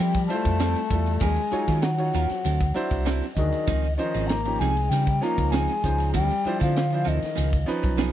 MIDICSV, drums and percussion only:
0, 0, Header, 1, 2, 480
1, 0, Start_track
1, 0, Tempo, 614754
1, 951, Time_signature, 4, 2, 24, 8
1, 6341, End_track
2, 0, Start_track
2, 0, Title_t, "Drums"
2, 112, Note_on_c, 9, 51, 65
2, 115, Note_on_c, 9, 36, 81
2, 190, Note_off_c, 9, 51, 0
2, 193, Note_off_c, 9, 36, 0
2, 228, Note_on_c, 9, 44, 76
2, 306, Note_off_c, 9, 44, 0
2, 353, Note_on_c, 9, 36, 69
2, 353, Note_on_c, 9, 51, 60
2, 431, Note_off_c, 9, 36, 0
2, 431, Note_off_c, 9, 51, 0
2, 463, Note_on_c, 9, 44, 78
2, 463, Note_on_c, 9, 51, 82
2, 471, Note_on_c, 9, 38, 99
2, 542, Note_off_c, 9, 44, 0
2, 542, Note_off_c, 9, 51, 0
2, 549, Note_off_c, 9, 38, 0
2, 593, Note_on_c, 9, 51, 58
2, 671, Note_off_c, 9, 51, 0
2, 704, Note_on_c, 9, 44, 80
2, 707, Note_on_c, 9, 36, 77
2, 782, Note_off_c, 9, 44, 0
2, 785, Note_off_c, 9, 36, 0
2, 827, Note_on_c, 9, 51, 58
2, 906, Note_off_c, 9, 51, 0
2, 936, Note_on_c, 9, 44, 76
2, 936, Note_on_c, 9, 51, 77
2, 945, Note_on_c, 9, 36, 98
2, 1014, Note_off_c, 9, 44, 0
2, 1014, Note_off_c, 9, 51, 0
2, 1023, Note_off_c, 9, 36, 0
2, 1061, Note_on_c, 9, 51, 54
2, 1139, Note_off_c, 9, 51, 0
2, 1179, Note_on_c, 9, 44, 79
2, 1257, Note_off_c, 9, 44, 0
2, 1308, Note_on_c, 9, 51, 56
2, 1312, Note_on_c, 9, 36, 66
2, 1316, Note_on_c, 9, 38, 30
2, 1386, Note_off_c, 9, 51, 0
2, 1390, Note_off_c, 9, 36, 0
2, 1394, Note_off_c, 9, 38, 0
2, 1421, Note_on_c, 9, 44, 77
2, 1421, Note_on_c, 9, 51, 77
2, 1429, Note_on_c, 9, 38, 99
2, 1499, Note_off_c, 9, 44, 0
2, 1499, Note_off_c, 9, 51, 0
2, 1507, Note_off_c, 9, 38, 0
2, 1549, Note_on_c, 9, 51, 57
2, 1627, Note_off_c, 9, 51, 0
2, 1665, Note_on_c, 9, 44, 80
2, 1743, Note_off_c, 9, 44, 0
2, 1793, Note_on_c, 9, 51, 55
2, 1800, Note_on_c, 9, 38, 28
2, 1871, Note_off_c, 9, 51, 0
2, 1878, Note_off_c, 9, 38, 0
2, 1911, Note_on_c, 9, 44, 72
2, 1911, Note_on_c, 9, 51, 75
2, 1989, Note_off_c, 9, 44, 0
2, 1989, Note_off_c, 9, 51, 0
2, 2035, Note_on_c, 9, 36, 82
2, 2038, Note_on_c, 9, 51, 59
2, 2113, Note_off_c, 9, 36, 0
2, 2116, Note_off_c, 9, 51, 0
2, 2151, Note_on_c, 9, 44, 80
2, 2229, Note_off_c, 9, 44, 0
2, 2273, Note_on_c, 9, 36, 73
2, 2274, Note_on_c, 9, 51, 57
2, 2351, Note_off_c, 9, 36, 0
2, 2352, Note_off_c, 9, 51, 0
2, 2388, Note_on_c, 9, 44, 75
2, 2388, Note_on_c, 9, 51, 70
2, 2396, Note_on_c, 9, 38, 95
2, 2466, Note_off_c, 9, 44, 0
2, 2466, Note_off_c, 9, 51, 0
2, 2474, Note_off_c, 9, 38, 0
2, 2512, Note_on_c, 9, 51, 55
2, 2520, Note_on_c, 9, 38, 27
2, 2590, Note_off_c, 9, 51, 0
2, 2598, Note_off_c, 9, 38, 0
2, 2625, Note_on_c, 9, 44, 81
2, 2629, Note_on_c, 9, 36, 75
2, 2704, Note_off_c, 9, 44, 0
2, 2707, Note_off_c, 9, 36, 0
2, 2752, Note_on_c, 9, 51, 55
2, 2830, Note_off_c, 9, 51, 0
2, 2870, Note_on_c, 9, 44, 80
2, 2870, Note_on_c, 9, 51, 68
2, 2871, Note_on_c, 9, 36, 101
2, 2948, Note_off_c, 9, 44, 0
2, 2948, Note_off_c, 9, 51, 0
2, 2949, Note_off_c, 9, 36, 0
2, 2999, Note_on_c, 9, 51, 51
2, 3077, Note_off_c, 9, 51, 0
2, 3111, Note_on_c, 9, 44, 79
2, 3189, Note_off_c, 9, 44, 0
2, 3235, Note_on_c, 9, 51, 60
2, 3313, Note_off_c, 9, 51, 0
2, 3352, Note_on_c, 9, 44, 81
2, 3352, Note_on_c, 9, 51, 77
2, 3359, Note_on_c, 9, 38, 97
2, 3430, Note_off_c, 9, 44, 0
2, 3430, Note_off_c, 9, 51, 0
2, 3437, Note_off_c, 9, 38, 0
2, 3479, Note_on_c, 9, 51, 58
2, 3557, Note_off_c, 9, 51, 0
2, 3596, Note_on_c, 9, 44, 75
2, 3674, Note_off_c, 9, 44, 0
2, 3722, Note_on_c, 9, 51, 60
2, 3800, Note_off_c, 9, 51, 0
2, 3837, Note_on_c, 9, 44, 77
2, 3837, Note_on_c, 9, 51, 76
2, 3915, Note_off_c, 9, 44, 0
2, 3915, Note_off_c, 9, 51, 0
2, 3956, Note_on_c, 9, 51, 63
2, 3959, Note_on_c, 9, 36, 81
2, 4034, Note_off_c, 9, 51, 0
2, 4037, Note_off_c, 9, 36, 0
2, 4075, Note_on_c, 9, 44, 80
2, 4153, Note_off_c, 9, 44, 0
2, 4201, Note_on_c, 9, 36, 73
2, 4205, Note_on_c, 9, 51, 61
2, 4279, Note_off_c, 9, 36, 0
2, 4283, Note_off_c, 9, 51, 0
2, 4319, Note_on_c, 9, 44, 77
2, 4319, Note_on_c, 9, 51, 78
2, 4327, Note_on_c, 9, 38, 101
2, 4397, Note_off_c, 9, 44, 0
2, 4397, Note_off_c, 9, 51, 0
2, 4405, Note_off_c, 9, 38, 0
2, 4447, Note_on_c, 9, 51, 59
2, 4454, Note_on_c, 9, 38, 29
2, 4525, Note_off_c, 9, 51, 0
2, 4532, Note_off_c, 9, 38, 0
2, 4559, Note_on_c, 9, 36, 72
2, 4562, Note_on_c, 9, 44, 78
2, 4637, Note_off_c, 9, 36, 0
2, 4640, Note_off_c, 9, 44, 0
2, 4684, Note_on_c, 9, 51, 62
2, 4762, Note_off_c, 9, 51, 0
2, 4799, Note_on_c, 9, 36, 96
2, 4799, Note_on_c, 9, 44, 79
2, 4799, Note_on_c, 9, 51, 80
2, 4877, Note_off_c, 9, 36, 0
2, 4877, Note_off_c, 9, 44, 0
2, 4877, Note_off_c, 9, 51, 0
2, 4923, Note_on_c, 9, 51, 56
2, 5001, Note_off_c, 9, 51, 0
2, 5042, Note_on_c, 9, 44, 78
2, 5121, Note_off_c, 9, 44, 0
2, 5162, Note_on_c, 9, 36, 66
2, 5163, Note_on_c, 9, 51, 57
2, 5171, Note_on_c, 9, 38, 30
2, 5240, Note_off_c, 9, 36, 0
2, 5241, Note_off_c, 9, 51, 0
2, 5249, Note_off_c, 9, 38, 0
2, 5281, Note_on_c, 9, 44, 83
2, 5281, Note_on_c, 9, 51, 79
2, 5289, Note_on_c, 9, 38, 102
2, 5359, Note_off_c, 9, 44, 0
2, 5359, Note_off_c, 9, 51, 0
2, 5367, Note_off_c, 9, 38, 0
2, 5408, Note_on_c, 9, 51, 59
2, 5486, Note_off_c, 9, 51, 0
2, 5520, Note_on_c, 9, 44, 74
2, 5598, Note_off_c, 9, 44, 0
2, 5641, Note_on_c, 9, 51, 54
2, 5649, Note_on_c, 9, 38, 30
2, 5719, Note_off_c, 9, 51, 0
2, 5727, Note_off_c, 9, 38, 0
2, 5757, Note_on_c, 9, 44, 74
2, 5757, Note_on_c, 9, 51, 78
2, 5835, Note_off_c, 9, 44, 0
2, 5835, Note_off_c, 9, 51, 0
2, 5878, Note_on_c, 9, 51, 57
2, 5879, Note_on_c, 9, 36, 80
2, 5956, Note_off_c, 9, 51, 0
2, 5957, Note_off_c, 9, 36, 0
2, 5996, Note_on_c, 9, 44, 75
2, 6074, Note_off_c, 9, 44, 0
2, 6119, Note_on_c, 9, 36, 73
2, 6121, Note_on_c, 9, 51, 57
2, 6197, Note_off_c, 9, 36, 0
2, 6199, Note_off_c, 9, 51, 0
2, 6230, Note_on_c, 9, 44, 77
2, 6230, Note_on_c, 9, 51, 74
2, 6238, Note_on_c, 9, 38, 97
2, 6308, Note_off_c, 9, 44, 0
2, 6308, Note_off_c, 9, 51, 0
2, 6316, Note_off_c, 9, 38, 0
2, 6341, End_track
0, 0, End_of_file